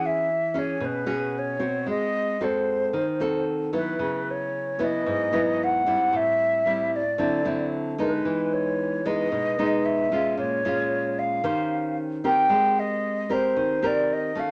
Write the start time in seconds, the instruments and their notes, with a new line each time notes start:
Already playing: nylon-string guitar E3 C#4 F#4 G#4
0.06 flute E5
0.54 nylon-string guitar C#4 F#4 G#4
0.59 flute C#5
0.80 nylon-string guitar B2
0.85 flute B4
1.06 nylon-string guitar C#4 F#4 G#4
1.39 flute C#5
1.59 nylon-string guitar C4 F#4
1.86 nylon-string guitar G#3, flute D#5
2.41 nylon-string guitar C4 F#4 A4, flute C5
2.93 nylon-string guitar D#3
3.20 nylon-string guitar C4 F#4 A4
3.73 nylon-string guitar F#3 B3 E4, flute B4
3.99 nylon-string guitar C#3
4.31 flute C#5
4.79 nylon-string guitar F#3 B3 E4
4.84 flute D#5
5.06 nylon-string guitar G#2
5.32 nylon-string guitar F#3 B3 E4
5.64 flute F#5
5.86 nylon-string guitar G3 C4 E4
6.13 nylon-string guitar A2, flute E5
6.66 nylon-string guitar G3 C4 E4
6.96 flute D5
7.18 nylon-string guitar D3 F#3 C4 E4
7.45 nylon-string guitar F#3 C4 E4
7.98 nylon-string guitar G#3 B3 D#4, flute B4
8.25 nylon-string guitar E3
8.54 flute C#5
9.06 nylon-string guitar G#3 B3 D#4, flute D#5
9.32 nylon-string guitar B2
9.59 nylon-string guitar G#3 B3 D#4
9.86 flute E5
10.12 nylon-string guitar G#3 C#4 F4
10.37 nylon-string guitar A#2, flute C#5
10.65 nylon-string guitar G#3 C#4 F4
11.19 flute F5
11.44 nylon-string guitar D#3 C#4 G4 C5
12.24 nylon-string guitar C4 G4 A#4, flute G5
12.49 nylon-string guitar G#3
12.79 flute D#5
13.29 nylon-string guitar C4 G4 A#4, flute C5
13.56 nylon-string guitar D#3
13.82 nylon-string guitar C4 G4 A#4, flute D5
14.13 flute D#5
14.35 nylon-string guitar A3 C#4 F#4
14.40 flute F5